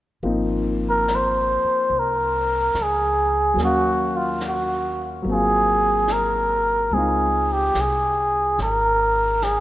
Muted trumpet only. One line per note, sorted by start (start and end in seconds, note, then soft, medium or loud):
0.89 1.17 A#4 medium
1.15 2.01 C5 medium
1.99 2.84 A#4 medium
2.82 3.62 G#4 medium
3.64 4.18 F#4 medium
4.17 4.43 F4 medium
4.48 5.06 F#4 medium
5.32 6.14 G#4 medium
6.12 6.95 A#4 medium
6.93 7.55 G#4 medium
7.53 7.82 G4 medium
7.81 8.62 G#4 medium
8.62 9.45 A#4 medium
9.43 9.60 G#4 medium